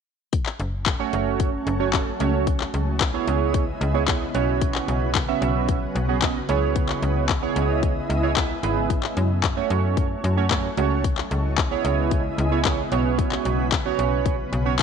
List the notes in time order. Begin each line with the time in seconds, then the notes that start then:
0.33 F#3 A3 C#4, kick, closed hi-hat
0.46 clap
0.60 F#1, closed hi-hat
0.86 kick, clap, closed hi-hat
0.99 A3 C#4 F#4 C#5
1.13 F#1, closed hi-hat
1.40 kick, closed hi-hat
1.67 F#1, closed hi-hat
1.80 A3 C#4 F#4 C#5
1.93 A3 C#4 F#4 A4, kick, clap, closed hi-hat
2.20 C#2 A3 C#4 F#4 C#5, closed hi-hat
2.47 C#3 G#3 B3 E4 D#5, kick, closed hi-hat
2.60 clap
2.74 C#2, closed hi-hat
3.01 kick, clap, closed hi-hat
3.14 B3 E4 G#4 C#5
3.28 C#2, closed hi-hat
3.54 kick, closed hi-hat
3.81 C#2, closed hi-hat
3.94 B3 E4 G#4 C#5
4.08 B3 E4 G#4 C#5, kick, clap, closed hi-hat
4.34 B1 F#3 B3 C#4 F#4 C#5, closed hi-hat
4.61 kick, closed hi-hat
4.75 clap
4.88 B1, closed hi-hat
5.15 kick, clap, closed hi-hat
5.28 B3 C#4 F#4 E5
5.42 B1, closed hi-hat
5.69 kick, closed hi-hat
5.95 B1, closed hi-hat
6.08 B3 C#4 F#4 G#4
6.22 B3 C#4 F#4 D#5, kick, clap, closed hi-hat
6.49 C#2 G#3 B3 E4 G#4 C#5 D#5, closed hi-hat
6.76 kick, closed hi-hat
6.89 clap
7.03 C#2, closed hi-hat
7.29 kick, clap, closed hi-hat
7.42 B3 E4 G#4 C#5
7.56 C#2, closed hi-hat
7.83 kick, closed hi-hat
8.10 C#2, closed hi-hat
8.23 B3 E4 G#4 C#5
8.36 B3 E4 G#4 E5, kick, clap, closed hi-hat
8.63 G#1 B3 E4 G#4 B4, closed hi-hat
8.90 F#3 A3 C#4, kick, closed hi-hat
9.03 clap
9.17 F#2, closed hi-hat
9.44 kick, clap, closed hi-hat
9.57 A3 C#4 F#4 C#5
9.70 F#2, closed hi-hat
9.97 kick, closed hi-hat
10.24 F#2, closed hi-hat
10.37 A3 C#4 F#4 C#5
10.51 A3 C#4 F#4 C#5, kick, clap, closed hi-hat
10.77 C#2 A3 C#4 F#4 C#5, closed hi-hat
11.04 C#3 G#3 B3 E4 D#5, kick, closed hi-hat
11.18 clap
11.31 C#2, closed hi-hat
11.58 kick, clap, closed hi-hat
11.71 B3 E4 G#4 C#5
11.85 C#2, closed hi-hat
12.11 kick, closed hi-hat
12.38 C#2, closed hi-hat
12.51 B3 E4 G#4 C#5
12.65 B3 E4 G#4 C#5, kick, clap, closed hi-hat
12.92 B1 C#3 F#3 B3 C#4 F#4 C#5, closed hi-hat
13.19 kick, closed hi-hat
13.32 clap
13.45 B1, closed hi-hat
13.72 kick, clap, closed hi-hat
13.85 B3 C#4 F#4 C#5
13.99 B1, closed hi-hat
14.26 kick, closed hi-hat
14.52 B1, closed hi-hat
14.66 B3 C#4 F#4 C#5
14.79 B3 C#4 F#4, kick, clap, closed hi-hat